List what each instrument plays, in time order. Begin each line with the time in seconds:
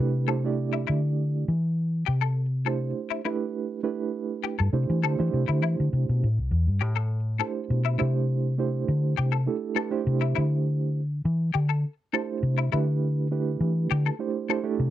0.00 fingered electric bass C3, reed electric piano A3 D4 E4 G4 B4
0.28 reed electric piano A3 D4 E4 G4 C5, clean electric guitar A4
0.44 reed electric piano A3 D4 E4 G4 D5
0.73 clean electric guitar E4
0.87 fingered electric bass D3, clean electric guitar E4
1.48 fingered electric bass E3
2.06 fingered electric bass C3, clean electric guitar G4
2.21 clean electric guitar A4
2.65 reed electric piano A3 D4 E4 G4 C5, clean electric guitar A4
3.10 clean electric guitar E4
3.25 reed electric piano A3 D4 E4 G4 B4, clean electric guitar E4
3.83 reed electric piano A3 D4 E4 G4 B4
4.44 clean electric guitar G4
4.59 fingered electric bass G2, clean electric guitar A4
4.73 fingered electric bass C3, reed electric piano A3 D4 E4 G4 C5
4.90 fingered electric bass E3
5.02 fingered electric bass D3, reed electric piano A3 D4 E4 G4 C5, clean electric guitar A4
5.19 fingered electric bass E3, reed electric piano A3 D4 E4 G4 C5
5.33 fingered electric bass C3
5.48 fingered electric bass D3, clean electric guitar E4
5.62 fingered electric bass E3, clean electric guitar E4
5.80 fingered electric bass D3
5.93 fingered electric bass C3
6.09 fingered electric bass B2
6.23 fingered electric bass A2
6.38 fingered electric bass C2
6.51 fingered electric bass E2
6.67 fingered electric bass G2
6.81 fingered electric bass A2, clean electric guitar G4
6.96 clean electric guitar A4
7.39 reed electric piano A3 D4 E4 G4 C5, clean electric guitar A4
7.70 fingered electric bass B2
7.85 clean electric guitar E4
7.98 fingered electric bass C3, reed electric piano A3 D4 E4 G4 C5, clean electric guitar E4
8.58 reed electric piano A3 D4 E4 G4 C5
8.88 fingered electric bass D3
9.17 fingered electric bass C3, clean electric guitar G4
9.32 clean electric guitar A4
9.46 reed electric piano A3 D4 E4 G4 A4
9.75 reed electric piano A3 D4 E4 G4 B4, clean electric guitar A4
9.91 reed electric piano A3 D4 E4 G4 C5
10.07 fingered electric bass C3
10.21 clean electric guitar E4
10.35 fingered electric bass D3, clean electric guitar E4
11.25 fingered electric bass E3
11.54 fingered electric bass D3, clean electric guitar G4
11.69 clean electric guitar A4
12.13 reed electric piano A3 D4 E4 G4 C5, clean electric guitar A4
12.43 fingered electric bass C3
12.58 clean electric guitar E4
12.72 fingered electric bass D3, reed electric piano A3 D4 E4 G4 B4, clean electric guitar E4
13.31 reed electric piano A3 D4 E4 G4 B4
13.60 fingered electric bass E3
13.91 fingered electric bass D3, clean electric guitar G4
14.06 clean electric guitar A4
14.19 reed electric piano A3 D4 E4 G4 C5
14.49 reed electric piano A3 D4 E4 G4 C5, clean electric guitar A4
14.63 reed electric piano A3 D4 E4 G4 A4
14.79 fingered electric bass C3